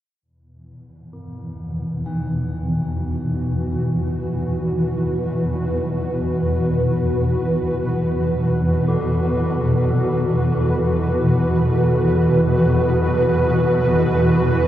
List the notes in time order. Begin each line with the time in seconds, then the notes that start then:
0.22 E2 B2 E3
1.13 G2
2.06 D#4
2.36 F#4
3.41 B4
8.88 A4